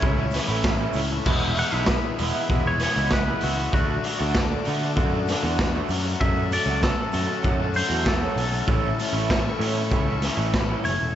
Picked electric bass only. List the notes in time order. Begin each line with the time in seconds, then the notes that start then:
0.02 C#2
0.48 A1
0.94 C#2
1.26 E1
1.73 B1
2.20 E1
2.49 E1
2.96 C#2
3.43 C#2
3.73 D2
4.21 D2
4.68 D3
4.97 F#2
5.43 E2
5.89 F#2
6.21 F#2
6.66 C#2
7.14 F#2
7.45 F#2
7.90 E2
8.36 B1
8.67 A1
9.13 A1
9.60 A2
9.92 C#2
10.37 A1
10.85 F#1
11.01 E1